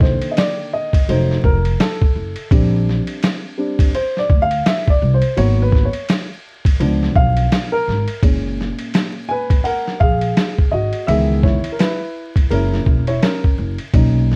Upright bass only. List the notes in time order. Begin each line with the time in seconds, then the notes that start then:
Already playing: C2
1.09 F1
1.44 F1
2.16 F#1
2.51 A#1
4.30 D2
5.02 C2
5.37 G#1
6.80 C#2
7.16 B1
7.88 G#1
8.23 F#1
10.01 A#1
10.73 G#1
11.08 C#2
12.51 F#1
12.87 E1
13.58 F#1
13.94 B1